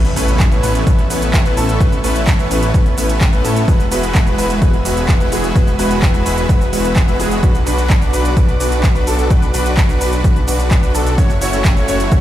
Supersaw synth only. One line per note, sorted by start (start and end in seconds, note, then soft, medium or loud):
0.16 0.49 A3 loud
0.16 0.49 B3 medium
0.16 0.49 C#4 medium
0.16 0.49 E4 medium
0.16 0.49 B4 loud
0.51 0.61 A3 medium
0.51 0.61 B3 medium
0.51 0.62 C#4 medium
0.51 0.62 E4 medium
0.51 0.62 B4 medium
0.63 0.84 A3 medium
0.63 0.84 B3 medium
0.63 0.84 C#4 medium
0.63 0.84 E4 medium
0.63 0.84 B4 loud
0.87 1.01 A3 medium
0.87 1.01 B3 medium
0.87 1.01 C#4 medium
0.87 1.01 E4 medium
0.87 1.01 B4 medium
1.10 1.43 A3 medium
1.10 1.43 B3 medium
1.10 1.43 C#4 medium
1.10 1.43 E4 medium
1.10 1.43 B4 medium
1.45 1.54 A3 medium
1.45 1.54 B3 medium
1.45 1.54 C#4 medium
1.45 1.54 E4 medium
1.45 1.54 B4 loud
1.57 1.78 A3 medium
1.57 1.78 B3 medium
1.57 1.78 C#4 medium
1.57 1.78 E4 medium
1.57 1.78 A4 loud
1.80 1.95 A3 medium
1.80 1.95 B3 medium
1.80 1.95 C#4 medium
1.80 1.95 E4 medium
1.80 1.95 B4 loud
2.04 2.36 A3 loud
2.04 2.36 B3 medium
2.04 2.36 C#4 medium
2.04 2.36 E4 medium
2.04 2.36 B4 loud
2.39 2.49 A3 medium
2.39 2.49 B3 medium
2.39 2.49 C#4 medium
2.39 2.49 E4 medium
2.39 2.49 B4 medium
2.51 2.71 A3 medium
2.51 2.71 B3 medium
2.51 2.71 C#4 medium
2.51 2.71 E4 medium
2.51 2.71 B4 loud
2.74 2.89 A3 medium
2.74 2.89 B3 medium
2.74 2.89 C#4 medium
2.74 2.89 E4 medium
2.74 2.89 B4 medium
2.98 3.30 A3 medium
2.98 3.30 B3 medium
2.98 3.30 C#4 medium
2.98 3.30 E4 medium
2.98 3.30 B4 medium
3.33 3.42 A3 medium
3.33 3.42 B3 medium
3.33 3.42 C#4 medium
3.33 3.42 E4 medium
3.33 3.42 B4 loud
3.44 3.65 A3 medium
3.44 3.65 B3 medium
3.44 3.65 C#4 medium
3.44 3.65 E4 medium
3.44 3.65 A4 loud
3.68 3.82 G#3 loud
3.68 3.82 B3 medium
3.68 3.82 E4 medium
3.68 3.82 F#4 medium
3.68 3.82 B4 loud
3.91 4.24 G#3 loud
3.91 4.24 B3 medium
3.91 4.24 E4 medium
3.91 4.24 F#4 medium
3.91 4.24 B4 loud
4.27 4.37 G#3 medium
4.27 4.37 B3 medium
4.27 4.37 E4 medium
4.27 4.37 F#4 medium
4.27 4.37 B4 medium
4.38 4.59 G#3 medium
4.38 4.59 B3 medium
4.38 4.59 E4 medium
4.38 4.59 F#4 medium
4.38 4.59 B4 loud
4.62 4.76 G#3 medium
4.62 4.76 B3 medium
4.62 4.76 E4 medium
4.62 4.76 F#4 medium
4.62 4.76 B4 medium
4.85 5.18 G#3 medium
4.85 5.17 B3 medium
4.85 5.17 E4 medium
4.85 5.18 F#4 medium
4.85 5.18 B4 medium
5.20 5.29 G#3 medium
5.20 5.29 B3 medium
5.20 5.29 E4 medium
5.20 5.29 F#4 medium
5.20 5.29 B4 loud
5.32 5.53 G#3 medium
5.32 5.53 B3 medium
5.32 5.53 E4 medium
5.32 5.53 F#4 medium
5.32 5.53 G#4 medium
5.55 5.70 G#3 medium
5.55 5.70 B3 medium
5.55 5.70 E4 medium
5.55 5.70 F#4 medium
5.55 5.70 B4 loud
5.79 6.11 G#3 loud
5.79 6.11 B3 medium
5.79 6.11 E4 medium
5.79 6.11 F#4 medium
5.79 6.11 B4 loud
6.14 6.24 G#3 medium
6.14 6.24 B3 medium
6.14 6.24 E4 medium
6.14 6.24 F#4 medium
6.14 6.24 B4 medium
6.26 6.46 G#3 loud
6.26 6.46 B3 medium
6.26 6.46 E4 medium
6.26 6.46 F#4 medium
6.26 6.46 B4 loud
6.49 6.64 G#3 medium
6.49 6.64 B3 medium
6.49 6.64 E4 medium
6.49 6.64 F#4 medium
6.49 6.64 B4 medium
6.73 7.05 G#3 medium
6.73 7.05 B3 medium
6.73 7.05 E4 medium
6.73 7.05 F#4 medium
6.73 7.05 B4 medium
7.08 7.17 G#3 medium
7.08 7.17 B3 medium
7.08 7.17 E4 medium
7.08 7.17 F#4 medium
7.08 7.17 B4 loud
7.19 7.40 G#3 medium
7.19 7.40 B3 medium
7.19 7.40 E4 medium
7.19 7.40 F#4 medium
7.19 7.40 G#4 loud
7.43 7.58 D4 medium
7.43 7.58 F#4 medium
7.43 7.58 B4 loud
7.67 7.99 D4 loud
7.67 7.99 F#4 medium
7.67 7.99 B4 loud
8.02 8.12 D4 medium
8.02 8.12 F#4 medium
8.02 8.12 B4 medium
8.13 8.34 D4 medium
8.13 8.34 F#4 medium
8.13 8.34 B4 loud
8.37 8.51 D4 medium
8.37 8.51 F#4 medium
8.37 8.51 B4 medium
8.60 8.93 D4 medium
8.60 8.93 F#4 medium
8.60 8.93 B4 medium
8.95 9.04 D4 medium
8.95 9.04 F#4 medium
8.95 9.04 B4 loud
9.07 9.28 D4 medium
9.07 9.28 F#4 medium
9.07 9.28 A4 loud
9.30 9.45 D4 medium
9.30 9.45 F#4 medium
9.30 9.45 B4 loud
9.54 9.86 D4 loud
9.54 9.86 F#4 medium
9.54 9.86 B4 loud
9.89 9.99 D4 medium
9.89 9.99 F#4 medium
9.89 9.99 B4 medium
10.01 10.21 D4 medium
10.01 10.21 F#4 medium
10.01 10.21 B4 loud
10.24 10.39 D4 medium
10.24 10.39 F#4 medium
10.24 10.39 B4 medium
10.48 10.80 D4 medium
10.48 10.80 F#4 medium
10.48 10.80 B4 medium
10.83 10.92 D4 medium
10.83 10.92 F#4 medium
10.83 10.92 B4 loud
10.94 11.15 D4 medium
10.94 11.15 F#4 medium
10.94 11.15 A4 loud
11.18 11.32 A3 loud
11.18 11.33 C#4 medium
11.18 11.32 E4 medium
11.18 11.32 F#4 medium
11.18 11.32 C#5 loud
11.41 11.74 A3 loud
11.41 11.74 C#4 medium
11.41 11.74 E4 medium
11.41 11.74 F#4 medium
11.41 11.74 C#5 loud
11.76 11.87 A3 medium
11.76 11.87 C#4 medium
11.76 11.87 E4 medium
11.76 11.87 F#4 medium
11.76 11.86 C#5 medium
11.88 12.09 A3 loud
11.88 12.09 C#4 medium
11.88 12.09 E4 medium
11.88 12.09 F#4 medium
11.88 12.09 C#5 loud
12.12 12.21 A3 medium
12.12 12.21 C#4 medium
12.12 12.21 E4 medium
12.12 12.21 F#4 medium
12.12 12.21 C#5 medium